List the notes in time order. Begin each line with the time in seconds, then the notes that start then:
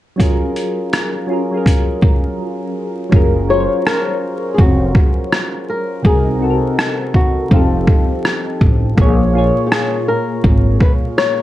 0.16 F#3 C#4 F4, kick
0.20 G#4 A#4, closed hi-hat
0.56 closed hi-hat
0.93 cross-stick, closed hi-hat
1.27 F#3 C#4 F4
1.31 G#4 A#4
1.51 F#3 C#4 F4
1.56 G#4 A#4
1.66 kick, closed hi-hat
2.02 kick
3.09 F#1 F#3 C#4 F4, kick
3.14 G#4 A#4
3.47 F#3 C#4 F4 C#5
3.52 G#4 C5
3.60 C#5
3.87 A#4, cross-stick
4.54 G#4
4.58 F1 F#4, kick
4.95 kick
5.32 cross-stick
5.70 A#4
6.02 C2 C3 C4 D#4 G#4, kick
6.07 F#4 A#4
6.37 C3 C4 D#4
6.42 F#4 A4
6.50 A#4
6.79 cross-stick
7.14 F#4, kick
7.49 F1 F3 C4 D#4 F4, kick
7.54 G4 A4
7.87 kick
8.25 cross-stick
8.61 A1, kick
8.95 A#1 A#2 A#3 F4, kick
9.00 G#4 C#5
9.32 A#2 A#3 F4
9.37 G#4 C#5
9.67 G4
9.71 G#4, cross-stick
10.08 A#4
10.44 G#1, kick
10.80 B4, kick
11.18 C#5, cross-stick